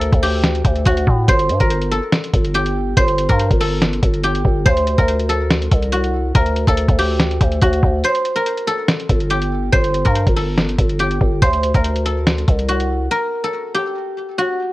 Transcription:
Already playing: D2 F#4 A4
0.01 closed hi-hat
0.12 D2, kick, closed hi-hat
0.23 G4, open hi-hat
0.44 snare, closed hi-hat
0.55 closed hi-hat
0.65 D2, kick, closed hi-hat
0.76 closed hi-hat
0.85 D2 F#4, kick, closed hi-hat
0.97 closed hi-hat
1.07 A2, kick
1.28 G1 C5, kick, closed hi-hat
1.39 closed hi-hat
1.49 G2, closed hi-hat
1.60 G1 A#4, kick, closed hi-hat
1.70 closed hi-hat
1.82 closed hi-hat
1.92 A4, closed hi-hat
2.13 snare, closed hi-hat
2.24 closed hi-hat
2.34 G1, kick, closed hi-hat
2.45 closed hi-hat
2.54 G4, closed hi-hat
2.66 closed hi-hat
2.97 G1 C5, kick, closed hi-hat
3.08 closed hi-hat
3.18 closed hi-hat
3.29 G2 A#4, kick, closed hi-hat
3.39 closed hi-hat
3.51 G1, kick, closed hi-hat
3.60 A4, open hi-hat
3.82 snare, closed hi-hat
3.93 closed hi-hat
4.03 G1, kick, closed hi-hat
4.14 closed hi-hat
4.24 G4, closed hi-hat
4.35 closed hi-hat
4.45 G1, kick
4.66 D2 C5, kick, closed hi-hat
4.77 closed hi-hat
4.87 closed hi-hat
4.98 D2 A#4, kick, closed hi-hat
5.08 closed hi-hat
5.20 closed hi-hat
5.29 A4, closed hi-hat
5.50 snare, closed hi-hat
5.62 closed hi-hat
5.72 C2, kick, closed hi-hat
5.83 closed hi-hat
5.92 F#4, closed hi-hat
6.04 closed hi-hat
6.35 D2 A#4, kick, closed hi-hat
6.46 closed hi-hat
6.56 closed hi-hat
6.67 D2 A4, kick, closed hi-hat
6.77 closed hi-hat
6.88 D2, kick, closed hi-hat
6.99 G4, open hi-hat
7.19 snare, closed hi-hat
7.31 closed hi-hat
7.40 D2, kick, closed hi-hat
7.51 closed hi-hat
7.61 D2 F#4, kick, closed hi-hat
7.73 closed hi-hat
7.83 D2, kick
8.04 C5, closed hi-hat
8.15 closed hi-hat
8.25 closed hi-hat
8.36 A#4, closed hi-hat
8.46 closed hi-hat
8.58 closed hi-hat
8.67 A4, closed hi-hat
8.88 snare, closed hi-hat
9.00 closed hi-hat
9.09 G1, kick, closed hi-hat
9.20 closed hi-hat
9.30 G4, closed hi-hat
9.42 closed hi-hat
9.73 G1 C5, kick, closed hi-hat
9.84 closed hi-hat
9.94 closed hi-hat
10.05 G2 A#4, kick, closed hi-hat
10.15 closed hi-hat
10.26 G1, kick, closed hi-hat
10.36 A4, open hi-hat
10.57 snare, closed hi-hat
10.69 closed hi-hat
10.79 G1, kick, closed hi-hat
10.89 closed hi-hat
10.99 G4, closed hi-hat
11.11 closed hi-hat
11.21 G1, kick
11.42 D2 C5, kick, closed hi-hat
11.53 closed hi-hat
11.63 closed hi-hat
11.74 D2 A#4, kick, closed hi-hat
11.84 closed hi-hat
11.96 closed hi-hat
12.05 A4, closed hi-hat
12.26 snare, closed hi-hat
12.38 closed hi-hat
12.48 C2, kick, closed hi-hat
12.59 closed hi-hat
12.68 F#4, closed hi-hat
12.80 closed hi-hat
13.11 A#4
13.44 A4
13.75 G4
14.38 F#4

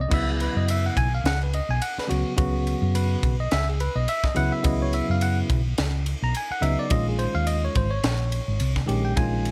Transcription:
0.01 D#5
0.08 C#2 C#3 F#3 B3 E4, kick, crash
0.14 E5
0.30 G#4
0.40 B4, ride
0.56 F#2 D#5
0.68 E5, ride
0.86 F#5
0.97 B1 G#5, kick, ride
1.15 F5
1.24 C#2 F#5, snare, ride
1.43 B4
1.53 D#5, ride
1.69 B1 G#5
1.82 F#5, ride
1.98 B4, muted fingered electric bass stroke, snare
2.07 C#2 C#3 F#3 B3 F#4, ride
2.37 C#2 C#3 F#3 B3 F#4, kick, ride
2.67 ride
2.82 F#2
2.95 B4, ride
3.23 B1, kick, ride
3.40 D#5
3.51 C#2 E5, snare, ride
3.69 G#4
3.80 B4, ride
3.95 B1 D#5
4.08 E5, ride
4.24 D#5, muted fingered electric bass stroke, kick, snare
4.35 C#2 C#3 F#3 B3 E4 F#5, ride
4.52 E5
4.63 C#2 C#3 F#3 B3 E4 D#5, kick, ride
4.82 C#5
4.93 E5, ride
5.09 F#2 F5
5.21 F#5, ride
5.50 B1, kick, ride
5.78 C#2, snare, ride
6.06 ride
6.22 B1 A#5
6.35 G#5, ride
6.50 F#5, muted fingered electric bass stroke
6.61 C#2 C#3 F#3 B3 D#4 E5, ride
6.79 D5
6.89 A#1 D#3 G#3 C#4 F4 D#5, kick, ride
7.09 G#4
7.19 C5, ride
7.34 D#2 F5
7.47 D#5, ride
7.65 C#5
7.75 G#1 C5, kick, ride
7.91 C#5
8.03 A#1, snare, ride
8.32 ride
8.48 G#1
8.60 C2, ride
8.76 kick, snare
8.87 A#1 D#3 G#3 C#4 G4, ride
9.05 G5
9.16 A#1 D#3 G#3 C#4 F4 G#5, kick, ride
9.45 ride

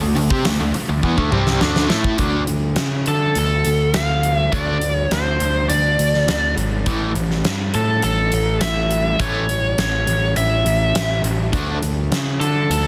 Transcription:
0.01 D2 D3 A3
0.15 D2 D3 A3, open hi-hat
0.30 C3 C4 G4, kick
0.45 D2 D3 A3, snare, open hi-hat
0.60 D2 D3 A3
0.74 muted distorted electric guitar stroke, muted overdriven electric guitar stroke, muted picked electric bass stroke, open hi-hat
0.89 D2 D3 A3
1.03 E2 E3 B3, kick
1.17 D2 D3 A3, kick
1.31 C2 C3 G3 C4, mid tom
1.47 snare
1.60 D2 D3 A3 D4, snare
1.76 snare
1.88 A2 A3 E4 A4, snare
2.04 kick
2.18 D2 D3 A3 D4, kick, closed hi-hat
2.47 D2, closed hi-hat
2.76 C#3, snare, closed hi-hat
3.06 D3 A4, closed hi-hat
3.35 D2 A4, closed hi-hat
3.65 D2, closed hi-hat
3.94 D2 F5, snare, closed hi-hat
4.23 closed hi-hat
4.39 E5
4.52 D2 D3 A3 D4 D5, kick, closed hi-hat
4.81 closed hi-hat
4.97 C#5
5.11 D2 C5, snare, closed hi-hat
5.40 D2, closed hi-hat
5.69 D2 D5, closed hi-hat
5.99 D2, closed hi-hat
6.14 snare
6.27 D2, snare, closed hi-hat
6.57 G#1, closed hi-hat
6.86 A1 A2 E3 A3, kick, closed hi-hat
7.15 A1, closed hi-hat
7.31 snare
7.45 G2, snare, closed hi-hat
7.74 A2 A4, closed hi-hat
8.02 A1 A4, closed hi-hat
8.32 A1, closed hi-hat
8.61 A1 E5, snare, closed hi-hat
8.91 closed hi-hat
9.19 A1 A2 E3 A3 C#5, kick, closed hi-hat
9.49 closed hi-hat
9.78 A1 C#5, snare, closed hi-hat
10.07 A1, closed hi-hat
10.36 A1 E5, closed hi-hat
10.65 A1, closed hi-hat
10.95 A1, snare, closed hi-hat
11.23 A1, closed hi-hat
11.53 D2 D3 A3 D4, kick, closed hi-hat
11.82 D2, closed hi-hat
12.11 C#3, snare, closed hi-hat
12.40 D3 A4, closed hi-hat
12.70 D2 A4, closed hi-hat

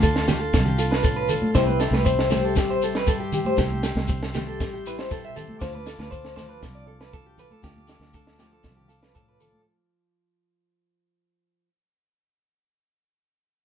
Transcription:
Already playing: D2 D3 F3 F4 F5 A5 C6
0.03 D4 A4, kick, shekere
0.16 snare
0.27 G4, muted nylon-string guitar stroke, snare, high conga, low conga, shekere
0.40 A4
0.53 C2, kick, snare, shekere
0.65 G4, low conga
0.78 F4 A4, shekere
0.91 B4, snare
1.02 A2 A4, kick, snare, shekere
1.17 B4
1.29 A4, low conga, shekere
1.42 high conga
1.54 C2 C3 E4 C5 E5 G5, kick, snare, shekere
1.67 B4, high conga
1.80 A4, snare, shekere
1.91 C2 B4, snare, high conga
2.05 C4 C5, kick, shekere
2.19 snare
2.29 G3 C5, snare, high conga, low conga, shekere
2.45 A4
2.56 A1 G4, kick, snare, shekere
2.70 C5
2.82 A4, muted nylon-string guitar stroke, shekere
2.95 B4, snare
3.06 G2 A4, kick, snare, shekere
3.20 G4
3.32 G4, low conga, shekere
3.45 C5, high conga
3.57 C2 C3 E4 G4, kick, snare, shekere
3.71 high conga
3.83 G4, snare, shekere
3.95 C2, snare, high conga
4.07 C4, muted clean electric guitar stroke, kick, shekere
4.23 snare
4.34 G3 G4, snare, high conga, low conga, shekere
4.47 A4
4.60 A1, kick, snare, shekere
4.74 G4
4.86 E4 B4, shekere
4.99 C5, snare
5.10 B2 A4, kick, snare, shekere
5.25 E5
5.36 C3 A4, low conga, shekere
5.48 high conga
5.59 D2 D3 F4 C5 F5 A5 D6, kick, snare, shekere
5.75 B4, high conga
5.86 A4, snare, shekere
5.99 D2 B4, snare, high conga
6.10 D4 C5, kick, shekere
6.25 snare
6.36 F3 C5, snare, high conga, low conga, shekere
6.49 B4
6.61 C2, muted clean electric guitar stroke, kick, snare, shekere
6.75 D5
6.87 A4, muted nylon-string guitar stroke
7.01 B4, snare
7.12 A4, muted nylon-string guitar stroke, kick, shekere
7.26 G4
7.38 A4 B4, low conga, shekere
7.51 A4, high conga
7.62 D2 D3 F4 G4, kick, snare, shekere
7.77 high conga
7.87 G4 A4, snare, shekere
8.00 D2, snare, high conga
8.13 D4 A4, kick, shekere
8.27 snare
8.38 F3 G4, snare, high conga, shekere
8.53 A4
8.63 C2, kick, snare, shekere
8.76 G4, low conga
8.88 F4 A4, shekere
9.03 B4, snare
9.14 A2 A4, kick, shekere
9.29 B4
9.40 A4, low conga, shekere
9.53 high conga

